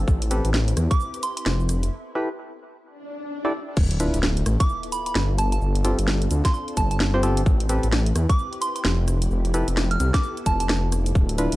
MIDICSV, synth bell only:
0, 0, Header, 1, 2, 480
1, 0, Start_track
1, 0, Tempo, 461538
1, 80, Time_signature, 4, 2, 24, 8
1, 12022, End_track
2, 0, Start_track
2, 0, Title_t, "Synth bell"
2, 0, Program_c, 0, 98
2, 942, Note_on_c, 0, 86, 93
2, 1259, Note_off_c, 0, 86, 0
2, 1279, Note_on_c, 0, 84, 90
2, 1373, Note_off_c, 0, 84, 0
2, 1423, Note_on_c, 0, 84, 76
2, 1484, Note_off_c, 0, 84, 0
2, 4784, Note_on_c, 0, 86, 88
2, 5100, Note_off_c, 0, 86, 0
2, 5120, Note_on_c, 0, 83, 91
2, 5213, Note_off_c, 0, 83, 0
2, 5265, Note_on_c, 0, 83, 76
2, 5326, Note_off_c, 0, 83, 0
2, 5599, Note_on_c, 0, 81, 89
2, 5693, Note_off_c, 0, 81, 0
2, 5746, Note_on_c, 0, 81, 77
2, 5806, Note_off_c, 0, 81, 0
2, 6706, Note_on_c, 0, 84, 90
2, 6766, Note_off_c, 0, 84, 0
2, 6801, Note_on_c, 0, 84, 77
2, 6894, Note_off_c, 0, 84, 0
2, 7042, Note_on_c, 0, 81, 88
2, 7134, Note_off_c, 0, 81, 0
2, 7186, Note_on_c, 0, 81, 75
2, 7246, Note_off_c, 0, 81, 0
2, 8627, Note_on_c, 0, 86, 92
2, 8942, Note_off_c, 0, 86, 0
2, 8959, Note_on_c, 0, 84, 90
2, 9053, Note_off_c, 0, 84, 0
2, 9106, Note_on_c, 0, 84, 76
2, 9166, Note_off_c, 0, 84, 0
2, 10306, Note_on_c, 0, 89, 91
2, 10366, Note_off_c, 0, 89, 0
2, 10401, Note_on_c, 0, 89, 77
2, 10494, Note_off_c, 0, 89, 0
2, 10545, Note_on_c, 0, 86, 93
2, 10634, Note_off_c, 0, 86, 0
2, 10882, Note_on_c, 0, 81, 90
2, 10975, Note_off_c, 0, 81, 0
2, 11026, Note_on_c, 0, 81, 75
2, 11086, Note_off_c, 0, 81, 0
2, 12022, End_track
0, 0, End_of_file